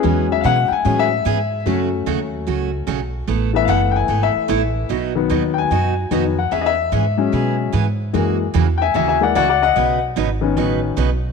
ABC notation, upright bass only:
X:1
M:4/4
L:1/8
Q:"Swing" 1/4=148
K:E
V:1 name="Upright bass" clef=bass
E,,2 B,, z A,,2 G,,2 | F,,2 D,,2 C,,2 B,,,2 | A,,,2 F,,,2 G,,, z A,,,2 | B,,,2 D,,2 F,,2 =F,,2 |
E,,2 G,,2 B,,2 G,,2 | F,,2 E,,2 D,,2 C,,2 | B,,,2 G,,,2 A,,,2 B,,,2 |]